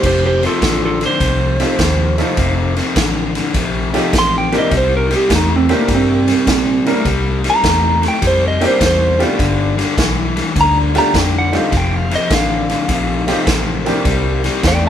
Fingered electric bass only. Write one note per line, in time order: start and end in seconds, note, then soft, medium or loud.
0.03 0.46 F1 medium
0.62 1.04 A1 medium
1.20 1.62 C2 medium
1.79 2.21 D#2 medium
2.37 2.79 F1 medium
2.96 3.38 A1 medium
3.54 3.97 A#1 medium
4.13 4.55 A1 medium
4.71 5.14 C2 medium
5.30 5.72 E2 medium
5.88 6.30 G2 medium
6.47 6.89 A#2 medium
7.05 7.47 C2 medium
7.64 8.06 E2 medium
8.22 8.64 F2 medium
8.81 9.23 E2 medium
9.39 9.81 G1 medium
9.98 10.39 B1 medium
10.56 10.98 D2 medium
11.14 11.56 F2 medium
11.72 12.14 F1 medium
12.31 12.72 A1 medium
12.89 13.31 A#1 loud
13.47 13.89 A1 medium
14.05 14.47 C2 loud
14.63 14.89 E2 medium